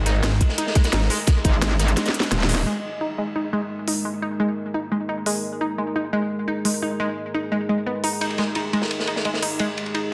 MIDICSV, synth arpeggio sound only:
0, 0, Header, 1, 2, 480
1, 0, Start_track
1, 0, Tempo, 346821
1, 1765, Time_signature, 4, 2, 24, 8
1, 14024, End_track
2, 0, Start_track
2, 0, Title_t, "Synth arpeggio sound"
2, 0, Program_c, 0, 84
2, 85, Note_on_c, 0, 63, 81
2, 194, Note_off_c, 0, 63, 0
2, 324, Note_on_c, 0, 56, 107
2, 433, Note_off_c, 0, 56, 0
2, 804, Note_on_c, 0, 63, 85
2, 870, Note_off_c, 0, 63, 0
2, 1044, Note_on_c, 0, 56, 73
2, 1110, Note_off_c, 0, 56, 0
2, 1284, Note_on_c, 0, 63, 74
2, 1394, Note_off_c, 0, 63, 0
2, 1524, Note_on_c, 0, 56, 104
2, 1633, Note_off_c, 0, 56, 0
2, 2004, Note_on_c, 0, 63, 81
2, 2069, Note_off_c, 0, 63, 0
2, 2243, Note_on_c, 0, 56, 78
2, 2309, Note_off_c, 0, 56, 0
2, 2484, Note_on_c, 0, 63, 80
2, 2593, Note_off_c, 0, 63, 0
2, 2724, Note_on_c, 0, 56, 101
2, 2833, Note_off_c, 0, 56, 0
2, 3204, Note_on_c, 0, 56, 74
2, 3313, Note_off_c, 0, 56, 0
2, 3444, Note_on_c, 0, 56, 78
2, 3510, Note_off_c, 0, 56, 0
2, 3685, Note_on_c, 0, 56, 98
2, 3794, Note_off_c, 0, 56, 0
2, 4165, Note_on_c, 0, 63, 79
2, 4230, Note_off_c, 0, 63, 0
2, 4405, Note_on_c, 0, 56, 78
2, 4470, Note_off_c, 0, 56, 0
2, 4644, Note_on_c, 0, 63, 80
2, 4754, Note_off_c, 0, 63, 0
2, 4885, Note_on_c, 0, 56, 101
2, 4994, Note_off_c, 0, 56, 0
2, 5365, Note_on_c, 0, 63, 73
2, 5430, Note_off_c, 0, 63, 0
2, 5605, Note_on_c, 0, 56, 79
2, 5670, Note_off_c, 0, 56, 0
2, 5845, Note_on_c, 0, 63, 76
2, 5954, Note_off_c, 0, 63, 0
2, 6086, Note_on_c, 0, 56, 99
2, 6194, Note_off_c, 0, 56, 0
2, 6564, Note_on_c, 0, 63, 78
2, 6630, Note_off_c, 0, 63, 0
2, 6804, Note_on_c, 0, 56, 72
2, 6870, Note_off_c, 0, 56, 0
2, 7044, Note_on_c, 0, 63, 73
2, 7153, Note_off_c, 0, 63, 0
2, 7284, Note_on_c, 0, 56, 96
2, 7393, Note_off_c, 0, 56, 0
2, 7764, Note_on_c, 0, 63, 77
2, 7829, Note_off_c, 0, 63, 0
2, 8003, Note_on_c, 0, 56, 78
2, 8069, Note_off_c, 0, 56, 0
2, 8244, Note_on_c, 0, 63, 75
2, 8353, Note_off_c, 0, 63, 0
2, 8483, Note_on_c, 0, 56, 101
2, 8593, Note_off_c, 0, 56, 0
2, 8964, Note_on_c, 0, 63, 77
2, 9030, Note_off_c, 0, 63, 0
2, 9204, Note_on_c, 0, 56, 69
2, 9270, Note_off_c, 0, 56, 0
2, 9445, Note_on_c, 0, 63, 81
2, 9554, Note_off_c, 0, 63, 0
2, 9684, Note_on_c, 0, 56, 105
2, 9793, Note_off_c, 0, 56, 0
2, 10165, Note_on_c, 0, 63, 76
2, 10230, Note_off_c, 0, 63, 0
2, 10404, Note_on_c, 0, 56, 80
2, 10470, Note_off_c, 0, 56, 0
2, 10644, Note_on_c, 0, 56, 76
2, 10754, Note_off_c, 0, 56, 0
2, 10884, Note_on_c, 0, 59, 74
2, 11048, Note_off_c, 0, 59, 0
2, 11123, Note_on_c, 0, 63, 97
2, 11189, Note_off_c, 0, 63, 0
2, 11364, Note_on_c, 0, 63, 82
2, 11430, Note_off_c, 0, 63, 0
2, 11605, Note_on_c, 0, 56, 74
2, 11670, Note_off_c, 0, 56, 0
2, 11845, Note_on_c, 0, 63, 78
2, 11954, Note_off_c, 0, 63, 0
2, 12085, Note_on_c, 0, 56, 98
2, 12194, Note_off_c, 0, 56, 0
2, 12565, Note_on_c, 0, 63, 73
2, 12630, Note_off_c, 0, 63, 0
2, 12805, Note_on_c, 0, 56, 74
2, 12870, Note_off_c, 0, 56, 0
2, 13044, Note_on_c, 0, 63, 69
2, 13154, Note_off_c, 0, 63, 0
2, 13284, Note_on_c, 0, 56, 99
2, 13393, Note_off_c, 0, 56, 0
2, 13763, Note_on_c, 0, 63, 75
2, 13829, Note_off_c, 0, 63, 0
2, 14024, End_track
0, 0, End_of_file